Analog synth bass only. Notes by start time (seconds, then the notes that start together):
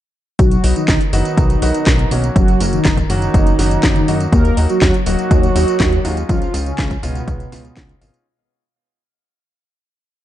0.39 B1
0.64 B1
0.88 B1
1.13 F#1
1.38 B1
1.62 B1
1.87 B1
2.11 B1
2.36 F#1
2.60 F#1
2.85 F#1
3.10 F#1
3.34 F#1
3.59 F#1
3.83 F#1
4.08 F#2
4.33 D#2
4.57 D#2
4.82 D#2
5.06 D#1
5.31 D#2
5.55 D#2
5.80 D#2
6.05 D#2
6.29 C#2
6.54 C#2
6.78 C#2
7.03 C#2
7.28 C#2
7.52 C#2
7.77 C#2
8.01 G#1